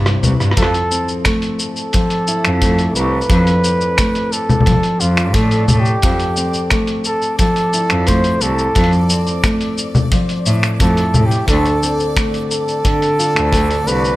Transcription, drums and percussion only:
0.06 cross-stick, open hi-hat, cabasa
0.23 low conga, cabasa
0.40 cross-stick, cabasa
0.51 cross-stick
0.57 kick, open hi-hat, cabasa
0.63 cross-stick
0.74 open hi-hat, cabasa
0.91 cabasa
1.08 cabasa
1.25 finger snap, kick, open hi-hat, cabasa
1.42 open hi-hat, cabasa
1.59 cabasa
1.76 cabasa
1.93 kick, open hi-hat, cabasa
2.10 open hi-hat, cabasa
2.27 cabasa
2.45 finger snap, cabasa
2.62 kick, open hi-hat, cabasa
2.78 open hi-hat, cabasa
2.96 cabasa
3.21 cabasa
3.30 kick, open hi-hat, cabasa
3.47 open hi-hat, cabasa
3.64 cabasa
3.81 cabasa
3.98 finger snap, kick, open hi-hat, cabasa
4.15 open hi-hat, cabasa
4.32 cabasa
4.50 low conga, cabasa
4.61 low conga
4.66 kick, open hi-hat, cabasa
4.72 low conga
4.83 open hi-hat, cabasa
5.00 cabasa
5.17 finger snap, cabasa
5.34 kick, open hi-hat, cabasa
5.51 open hi-hat, cabasa
5.68 low conga, cabasa
5.85 cabasa
6.02 kick, open hi-hat, cabasa
6.20 open hi-hat, cabasa
6.36 cabasa
6.54 cabasa
6.70 finger snap, kick, open hi-hat, cabasa
6.87 open hi-hat, cabasa
7.04 cabasa
7.22 cabasa
7.39 kick, open hi-hat, cabasa
7.56 open hi-hat, cabasa
7.73 cabasa
7.90 finger snap, cabasa
8.07 kick, open hi-hat, cabasa
8.24 open hi-hat, cabasa
8.41 cabasa
8.58 cabasa
8.75 kick, open hi-hat, cabasa
8.84 open hi-hat
8.92 cabasa
9.10 cabasa
9.27 open hi-hat, cabasa
9.44 finger snap, kick, open hi-hat, cabasa
9.61 open hi-hat, cabasa
9.78 cabasa
9.95 low conga, cabasa
10.12 kick, open hi-hat, cabasa
10.29 open hi-hat, cabasa
10.46 cabasa
10.63 finger snap, cabasa
10.80 kick, open hi-hat, cabasa
10.97 open hi-hat, cabasa
11.14 low conga, cabasa
11.31 open hi-hat, cabasa
11.48 kick, open hi-hat, cabasa
11.66 open hi-hat, cabasa
11.83 cabasa
12.00 cabasa
12.17 finger snap, kick, open hi-hat, cabasa
12.34 open hi-hat, cabasa
12.51 cabasa
12.68 cabasa
12.85 kick, open hi-hat, cabasa
13.02 open hi-hat, cabasa
13.20 cabasa
13.36 finger snap, cabasa
13.53 kick, open hi-hat, cabasa
13.71 open hi-hat, cabasa
13.87 cabasa
14.04 cabasa

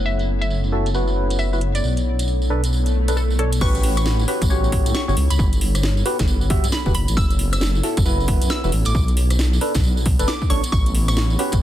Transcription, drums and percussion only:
0.06 tambourine
0.19 closed hi-hat, tambourine
0.41 closed hi-hat, tambourine
0.50 tambourine
0.64 tambourine
0.86 closed hi-hat, tambourine
0.94 tambourine
1.07 tambourine
1.30 closed hi-hat, tambourine
1.39 tambourine
1.53 tambourine
1.61 closed hi-hat
1.75 closed hi-hat, tambourine
1.84 tambourine
1.97 closed hi-hat, tambourine
2.19 closed hi-hat, tambourine
2.28 tambourine
2.42 tambourine
2.64 closed hi-hat, tambourine
2.73 tambourine
2.86 closed hi-hat, tambourine
3.08 closed hi-hat, tambourine
3.17 tambourine
3.30 tambourine
3.39 closed hi-hat
3.52 closed hi-hat, tambourine
3.61 kick, crash, tambourine
3.75 closed hi-hat, tambourine
3.83 open hi-hat
3.97 cross-stick, closed hi-hat, tambourine
4.06 snare, tambourine
4.19 tambourine
4.28 open hi-hat
4.42 kick, closed hi-hat, tambourine
4.50 tambourine
4.64 tambourine
4.72 kick, open hi-hat
4.86 closed hi-hat, tambourine
4.94 snare, tambourine
5.09 tambourine
5.17 open hi-hat
5.30 closed hi-hat, tambourine
5.39 kick, tambourine
5.53 closed hi-hat, tambourine
5.61 open hi-hat
5.75 cross-stick, closed hi-hat, tambourine
5.83 snare, tambourine
5.97 tambourine
6.06 open hi-hat
6.19 kick, snare, closed hi-hat, tambourine
6.27 tambourine
6.41 tambourine
6.50 kick, open hi-hat
6.64 closed hi-hat, tambourine
6.72 snare, tambourine
6.86 kick, tambourine
6.95 open hi-hat
7.08 closed hi-hat, tambourine
7.17 kick, tambourine
7.30 closed hi-hat, tambourine
7.39 open hi-hat
7.53 cross-stick, closed hi-hat, tambourine
7.61 snare, tambourine
7.75 tambourine
7.83 open hi-hat
7.97 kick, closed hi-hat, tambourine
8.05 tambourine
8.20 tambourine
8.28 kick, open hi-hat
8.42 closed hi-hat, tambourine
8.50 snare, tambourine
8.64 tambourine
8.72 open hi-hat
8.85 closed hi-hat, tambourine
8.95 kick, tambourine
9.08 closed hi-hat, tambourine
9.17 open hi-hat
9.30 cross-stick, closed hi-hat, tambourine
9.39 snare, tambourine
9.53 tambourine
9.61 open hi-hat
9.74 kick, snare, closed hi-hat, tambourine
9.84 tambourine
9.97 tambourine
10.06 kick, open hi-hat
10.19 closed hi-hat, tambourine
10.28 snare, tambourine
10.42 kick, tambourine
10.50 open hi-hat
10.63 closed hi-hat, tambourine
10.72 kick, tambourine
10.86 closed hi-hat, tambourine
10.95 open hi-hat
11.08 cross-stick, closed hi-hat, tambourine
11.17 snare, tambourine
11.30 tambourine
11.39 open hi-hat
11.52 kick, closed hi-hat, tambourine

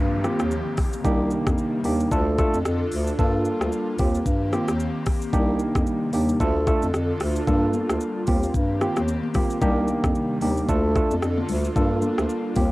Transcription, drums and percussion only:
0.24 cross-stick, shaker
0.39 cross-stick, shaker
0.51 shaker
0.77 kick, cross-stick, open hi-hat, shaker
0.93 shaker
1.05 kick, shaker
1.30 shaker
1.47 kick, cross-stick, shaker
1.58 shaker
1.84 open hi-hat, shaker
2.00 shaker
2.12 kick, shaker
2.38 kick, cross-stick, shaker
2.54 shaker
2.65 cross-stick, shaker
2.92 open hi-hat, shaker
3.07 shaker
3.19 kick, shaker
3.45 shaker
3.61 cross-stick, shaker
3.72 shaker
3.98 kick, open hi-hat, shaker
4.15 shaker
4.26 kick, shaker
4.53 cross-stick, shaker
4.68 cross-stick, shaker
4.80 shaker
5.06 kick, cross-stick, open hi-hat, shaker
5.22 shaker
5.33 kick, shaker
5.59 shaker
5.75 kick, cross-stick, shaker
5.87 shaker
6.13 open hi-hat, shaker
6.29 shaker
6.40 kick, shaker
6.67 kick, cross-stick, shaker
6.82 shaker
6.94 cross-stick, shaker
7.20 cross-stick, open hi-hat, shaker
7.36 shaker
7.47 kick, low conga, shaker
7.73 high conga, shaker
7.90 cross-stick, shaker
8.01 shaker
8.27 kick, open hi-hat, high conga, low conga, shaker
8.43 shaker
8.54 kick, shaker
8.81 cross-stick, shaker
8.97 cross-stick, high conga, shaker
9.08 shaker
9.23 high conga
9.34 kick, cross-stick, open hi-hat, low conga, shaker
9.50 shaker
9.62 kick, low conga, shaker
9.88 high conga, shaker
10.04 kick, cross-stick, shaker
10.15 shaker
10.41 open hi-hat, high conga, low conga, shaker
10.57 shaker
10.69 kick, shaker
10.96 kick, cross-stick, shaker
11.11 high conga, shaker
11.22 cross-stick, shaker
11.38 high conga
11.49 open hi-hat, low conga, shaker
11.64 shaker
11.76 kick, low conga, shaker
12.02 high conga, shaker
12.18 cross-stick, shaker
12.29 shaker
12.56 kick, open hi-hat, high conga, low conga, shaker

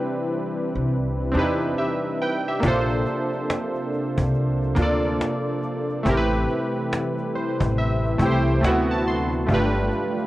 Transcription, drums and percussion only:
2.63 cajon bass
2.89 cajon slap
3.06 cajon slap
3.33 cajon slap
3.50 cajon slap
3.75 cajon slap
3.93 cajon slap
4.18 cajon bass
4.34 cajon slap
4.63 cajon slap
4.76 cajon bass
5.04 cajon slap
5.21 cajon slap
5.47 cajon slap
5.63 cajon slap
5.90 cajon slap
6.06 cajon bass
6.31 cajon slap
6.49 cajon slap
6.76 cajon slap
6.93 cajon slap
7.18 cajon slap
7.36 cajon slap
7.60 cajon bass
7.77 cajon slap
8.06 cajon slap
8.19 cajon bass
8.47 cajon slap
8.64 cajon slap
8.90 cajon slap
9.06 cajon slap
9.33 cajon slap
9.49 cajon bass
9.74 cajon slap
9.92 cajon slap
10.18 cajon slap

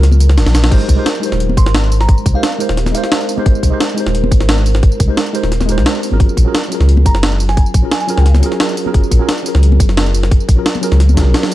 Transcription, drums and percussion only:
0.03 snare, closed hi-hat
0.12 tambourine, high conga
0.20 closed hi-hat, tambourine
0.29 snare
0.38 snare, closed hi-hat
0.46 snare, tambourine
0.55 snare, open hi-hat, tambourine
0.64 snare, high conga
0.71 kick, closed hi-hat, crash
0.81 tambourine
0.89 kick, closed hi-hat, tambourine
1.06 snare, closed hi-hat
1.15 tambourine
1.23 open hi-hat, tambourine
1.32 snare
1.40 closed hi-hat
1.49 high conga
1.57 kick, closed hi-hat, tambourine
1.66 snare
1.74 snare, closed hi-hat, high conga
1.84 tambourine
1.92 open hi-hat, tambourine
2.01 snare
2.09 kick, closed hi-hat
2.18 tambourine
2.26 kick, closed hi-hat, tambourine
2.43 snare, closed hi-hat
2.52 tambourine
2.60 open hi-hat, tambourine
2.69 snare
2.77 snare, closed hi-hat
2.86 snare, tambourine, high conga
2.95 closed hi-hat, tambourine
3.04 snare
3.12 snare, closed hi-hat
3.21 tambourine
3.29 open hi-hat, tambourine
3.38 high conga
3.46 kick, closed hi-hat
3.55 tambourine
3.63 kick, closed hi-hat, tambourine
3.80 snare, closed hi-hat
3.89 tambourine
3.98 open hi-hat, tambourine
4.07 snare
4.15 closed hi-hat
4.24 high conga
4.32 kick, closed hi-hat, tambourine
4.41 snare
4.49 snare, closed hi-hat, high conga
4.58 tambourine
4.66 open hi-hat, tambourine
4.75 snare
4.83 kick, closed hi-hat
4.92 tambourine
5.00 kick, closed hi-hat, tambourine
5.17 snare, closed hi-hat
5.26 tambourine
5.35 open hi-hat, tambourine
5.43 snare
5.52 snare, closed hi-hat
5.61 snare, tambourine, high conga
5.69 closed hi-hat, tambourine
5.78 snare
5.86 snare, closed hi-hat
5.95 tambourine
6.03 open hi-hat, tambourine
6.11 high conga
6.20 kick, closed hi-hat
6.29 tambourine
6.37 kick, closed hi-hat, tambourine
6.55 snare, closed hi-hat
6.64 tambourine
6.72 open hi-hat, tambourine
6.81 snare
6.89 closed hi-hat
6.97 high conga
7.06 kick, closed hi-hat, tambourine
7.15 snare
7.23 snare, closed hi-hat, high conga
7.32 tambourine
7.40 open hi-hat, tambourine
7.49 snare
7.57 kick, closed hi-hat
7.66 tambourine
7.74 kick, closed hi-hat, tambourine
7.92 snare, closed hi-hat
8.00 tambourine
8.09 open hi-hat, tambourine
8.18 snare
8.26 snare, closed hi-hat
8.34 snare, tambourine, high conga
8.43 closed hi-hat, tambourine
8.52 snare
8.60 snare, closed hi-hat
8.69 tambourine
8.77 open hi-hat, tambourine
8.86 high conga
8.94 kick, closed hi-hat
9.03 tambourine
9.11 kick, closed hi-hat, tambourine
9.29 snare, closed hi-hat
9.38 tambourine
9.46 open hi-hat, tambourine
9.55 snare
9.63 closed hi-hat
9.72 high conga
9.80 kick, closed hi-hat, tambourine
9.89 snare
9.97 snare, closed hi-hat, high conga
10.06 tambourine
10.14 open hi-hat, tambourine
10.23 snare
10.31 kick, closed hi-hat
10.40 tambourine
10.49 kick, closed hi-hat, tambourine
10.66 snare, closed hi-hat
10.75 tambourine, high conga
10.83 open hi-hat, tambourine
10.92 snare
11.00 snare, closed hi-hat
11.09 tambourine, high conga
11.17 kick, snare, closed hi-hat, tambourine
11.34 snare, closed hi-hat
11.43 snare, tambourine

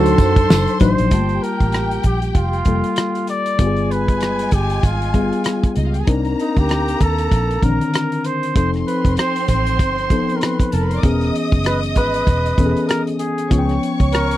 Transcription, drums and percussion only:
0.06 closed hi-hat
0.18 kick, closed hi-hat, tambourine
0.36 kick, closed hi-hat
0.50 snare, tambourine
0.67 closed hi-hat
0.80 kick, closed hi-hat, tambourine
0.98 closed hi-hat
1.11 kick, closed hi-hat
1.29 closed hi-hat
1.44 closed hi-hat
1.60 kick, closed hi-hat
1.72 cross-stick, closed hi-hat
1.91 closed hi-hat
2.03 kick, closed hi-hat
2.22 closed hi-hat
2.35 kick, closed hi-hat
2.53 closed hi-hat
2.65 kick, closed hi-hat
2.84 closed hi-hat
2.96 cross-stick, closed hi-hat
3.15 closed hi-hat
3.27 cross-stick, closed hi-hat
3.46 closed hi-hat
3.59 kick, closed hi-hat
3.76 closed hi-hat
3.91 closed hi-hat
4.08 kick, closed hi-hat
4.21 cross-stick, closed hi-hat
4.39 closed hi-hat
4.51 kick, closed hi-hat
4.70 closed hi-hat
4.83 kick, closed hi-hat
5.02 closed hi-hat
5.14 kick, closed hi-hat
5.33 closed hi-hat
5.44 cross-stick, closed hi-hat
5.63 kick, closed hi-hat
5.76 closed hi-hat
5.94 closed hi-hat
6.07 kick, closed hi-hat
6.25 closed hi-hat
6.39 closed hi-hat
6.57 kick, closed hi-hat
6.69 cross-stick, closed hi-hat
6.88 closed hi-hat
7.00 kick, closed hi-hat
7.18 closed hi-hat
7.31 kick, closed hi-hat
7.51 closed hi-hat
7.62 kick, closed hi-hat
7.81 closed hi-hat
7.94 cross-stick, closed hi-hat
8.12 closed hi-hat
8.24 closed hi-hat
8.43 closed hi-hat
8.56 kick, closed hi-hat
8.74 cross-stick, closed hi-hat
8.88 closed hi-hat
9.05 kick, closed hi-hat
9.17 cross-stick, closed hi-hat
9.36 closed hi-hat
9.48 kick, closed hi-hat
9.67 closed hi-hat
9.79 kick, closed hi-hat
9.98 closed hi-hat
10.10 kick, closed hi-hat
10.29 closed hi-hat
10.41 cross-stick, closed hi-hat
10.60 kick, closed hi-hat
10.72 closed hi-hat
10.91 closed hi-hat
11.03 kick, closed hi-hat
11.21 cross-stick, closed hi-hat
11.36 closed hi-hat
11.52 kick, closed hi-hat
11.64 cross-stick, closed hi-hat
11.83 closed hi-hat
11.96 kick, closed hi-hat
12.14 closed hi-hat
12.27 kick, closed hi-hat
12.46 closed hi-hat
12.58 kick, closed hi-hat
12.77 closed hi-hat
12.89 cross-stick, closed hi-hat
13.07 closed hi-hat
13.19 closed hi-hat
13.38 closed hi-hat
13.51 kick, closed hi-hat
13.69 cross-stick, closed hi-hat
13.83 closed hi-hat
14.00 kick, closed hi-hat
14.12 cross-stick, closed hi-hat
14.31 closed hi-hat

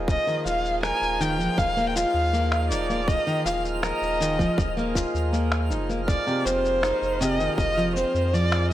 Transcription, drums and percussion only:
0.08 kick, shaker
0.28 shaker
0.46 shaker
0.65 shaker
0.83 finger snap, shaker
1.03 shaker
1.21 shaker
1.40 shaker
1.58 kick, shaker
1.78 shaker
1.96 shaker
2.34 shaker
2.52 finger snap, shaker
2.71 shaker
2.90 shaker
3.08 kick, shaker
3.28 shaker
3.46 shaker
3.65 shaker
3.83 finger snap, shaker
4.03 shaker
4.21 shaker
4.39 kick, shaker
4.58 kick, shaker
4.78 shaker
4.95 kick, shaker
5.15 shaker
5.34 shaker
5.52 finger snap, shaker
5.71 shaker
5.90 shaker
6.08 kick, shaker
6.27 shaker
6.46 shaker
6.65 shaker
6.83 finger snap, shaker
7.03 shaker
7.21 shaker
7.40 shaker
7.58 kick, shaker
7.78 shaker
7.97 shaker
8.15 shaker
8.34 shaker
8.52 finger snap, shaker

